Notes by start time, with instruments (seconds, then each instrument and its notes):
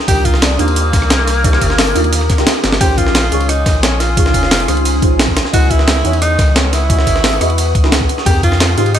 Already playing: ambient pad A#4 F5 D6 D#6
0.07 sub bass C2, synth stab D4 D#4 F4 G4 A#4, tenor saxophone G4, kick, closed hi-hat, ride
0.25 tenor saxophone F4, kick, closed hi-hat, ride
0.34 snare
0.42 tenor saxophone D4, snare, closed hi-hat, ride
0.58 sub bass D#2, tenor saxophone A#3, synth stab D4 D#4 F4 G4 C5, closed hi-hat, ride
0.68 ride
0.76 closed hi-hat, ride
0.93 sub bass C2, kick, snare, closed hi-hat, ride
1.02 cross-stick
1.10 snare, closed hi-hat, ride
1.19 cross-stick
1.27 snare, closed hi-hat, ride
1.43 synth stab D4 D#4 F4 G4 C5, kick, closed hi-hat, ride
1.53 cross-stick, snare
1.61 sub bass G1, kick, closed hi-hat, ride
1.70 snare
1.78 snare, closed hi-hat, open hi-hat
1.87 ride
1.95 sub bass D#2, synth stab D4 D#4 F4 G4 A#4, closed hi-hat, ride
2.04 ride
2.13 closed hi-hat, ride
2.21 cross-stick
2.30 kick, snare, closed hi-hat, ride
2.37 synth stab D4 D#4 F4 G4 A#4, snare, closed hi-hat
2.47 snare, closed hi-hat, ride
2.64 sub bass G1, snare, closed hi-hat, ride
2.72 snare
2.79 sub bass A#1, synth stab C#4 D#4 F4 G#4 C5, ambient pad C#4 G#5 C6 D#6, tenor saxophone G4, kick, closed hi-hat, ride
2.98 tenor saxophone F4, kick, closed hi-hat, ride
3.07 snare
3.15 snare, closed hi-hat, ride
3.30 sub bass C#2, synth stab C#4 D#4 F4 G#4 C#5, closed hi-hat, ride
3.41 ride
3.49 tenor saxophone D#4, cross-stick, closed hi-hat, ride
3.66 sub bass A#1, kick, snare, closed hi-hat, ride
3.83 tenor saxophone C#4, snare, closed hi-hat, ride
4.00 tenor saxophone F4, snare, closed hi-hat, ride
4.16 synth stab C#4 D#4 F4 G#4 C#5, kick, closed hi-hat, ride
4.26 snare
4.34 sub bass F1, kick, closed hi-hat, ride
4.43 snare
4.51 snare, closed hi-hat, open hi-hat
4.60 ride
4.68 sub bass C#2, synth stab C#4 D#4 F4 G#4 C5, cross-stick, closed hi-hat, ride
4.77 ride
4.85 closed hi-hat, ride
5.01 sub bass A#1, synth stab C#4 D#4 F4 G#4 C5, kick, closed hi-hat, ride
5.19 snare, closed hi-hat, ride
5.28 kick
5.37 cross-stick, snare, closed hi-hat, ride
5.45 snare
5.52 sub bass C#2, synth stab E4 F#4 G#4 B4 D#5, tenor saxophone F#4, ambient pad B4 F#5 C#6 D#6, kick, closed hi-hat, ride
5.70 tenor saxophone E4, kick, closed hi-hat, ride
5.79 snare
5.88 snare, closed hi-hat, ride
6.03 sub bass E2, synth stab E3 D#4 F#4 G#4 C#5, closed hi-hat, ride
6.13 ride
6.22 tenor saxophone D#4, cross-stick, closed hi-hat, ride
6.39 sub bass C#2, kick, snare, closed hi-hat, ride
6.56 tenor saxophone C#4, snare, closed hi-hat, ride
6.73 tenor saxophone E4, snare, closed hi-hat, ride
6.89 synth stab E4 F#4 G#4 C#5 D#5, kick, closed hi-hat, ride
6.99 snare
7.07 sub bass G#1, kick, closed hi-hat, ride
7.16 snare
7.24 snare, closed hi-hat, open hi-hat
7.33 ride
7.40 sub bass E2, synth stab E4 F#4 G#4 B4 D#5, cross-stick, closed hi-hat, ride
7.50 ride
7.58 closed hi-hat, ride
7.75 sub bass C#2, kick, closed hi-hat, ride
7.83 synth stab D#4 E4 F#4 G#4 B4, snare
7.92 snare, closed hi-hat, ride
8.01 kick
8.09 ambient pad G#3 G5 A#5, closed hi-hat, ride
8.18 snare
8.25 sub bass F2, synth stab C4 D#4 G4 G#4 A#4, tenor saxophone G4, kick, closed hi-hat, ride
8.43 tenor saxophone F4, kick, closed hi-hat, ride
8.52 snare
8.60 snare, closed hi-hat, ride
8.76 sub bass G#2, synth stab C4 D#4 G4 G#4 C5, tenor saxophone F4, closed hi-hat, ride
8.86 ride
8.95 tenor saxophone D#4, cross-stick, closed hi-hat, ride